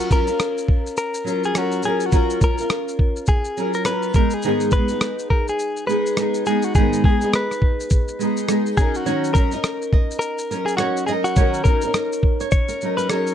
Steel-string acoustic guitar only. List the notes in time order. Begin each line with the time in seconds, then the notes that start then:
Already playing: C#4 F4 A#4
0.11 F#3 C#4 F4 A#4
0.27 C#4 F4 A#4
1.24 F#3 C#4 F4 A#4
1.54 F#3 C#4 F4 A#4
1.84 F#3 C#4 F4 A#4
2.11 F#3 C#4 F4 A#4
2.40 F#3 C#4 F4 A#4
2.58 C#4 F4 A#4
3.57 F#3 C#4 F4 A#4
3.86 F#3 C#4 F4
3.90 A#4
4.14 G#3 B3 D#4 G#4
4.44 G#2 D#3 G#3 B3 D#4 G#4
4.73 G#3 B3 D#4 G#4
4.90 G#3 B3 D#4 G#4
5.87 G#3 B3 D#4 G#4
6.16 G#3 B3 D#4 G#4
6.46 G#3 B3 D#4 G#4
6.75 G#2 D#3 G#3 B3 D#4 G#4
7.04 G#3 B3 D#4 G#4
7.22 G#3 B3 D#4 G#4
8.19 G#3 B3 D#4 G#4
8.48 G#3 B3 D#4 G#4
8.76 F#3 C#4 D#4 A#4
9.05 D#3 F#3 C#4 D#4 A#4
9.35 F#3 C#4 D#4 A#4
9.52 C#4 D#4 A#4
10.51 F#3 C#4 D#4 A#4
10.80 F#3 C#4 D#4 A#4
11.09 F#3 C#4 D#4 A#4
11.37 D#3 F#3 C#4 D#4 A#4
11.66 F#3 C#4 D#4 A#4
11.83 C#4 D#4 A#4
12.82 F#3 C#4 D#4 A#4
13.10 F#3 C#4 D#4 A#4